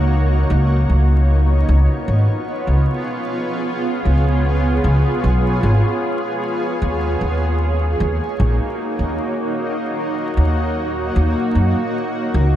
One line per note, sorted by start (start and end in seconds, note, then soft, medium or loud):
0.00 0.46 C#2 medium
0.00 0.50 A#3 medium
0.00 2.22 D#4 medium
0.00 0.50 F#4 medium
0.00 12.56 C#5 medium
0.50 0.85 C#2 loud
0.50 6.82 B3 medium
0.88 1.65 C#2 medium
0.88 6.82 F4 medium
1.69 1.86 C#2 medium
1.69 7.84 G#4 medium
2.08 2.26 G#1 loud
2.67 2.85 C#2 medium
4.05 4.81 C#2 medium
4.84 5.02 C#2 loud
5.24 5.59 B1 medium
5.63 5.81 G#1 loud
6.82 7.17 D#2 medium
6.82 12.56 A#3 medium
7.10 12.56 D#4 medium
7.21 7.96 D#2 medium
7.78 12.56 F#4 medium
8.00 8.18 D#2 loud
8.40 8.57 A#1 loud
8.99 9.16 D#2 medium
10.37 11.12 D#2 medium
11.16 11.34 D#2 loud
11.55 11.73 F#2 medium
12.34 12.56 C#2 loud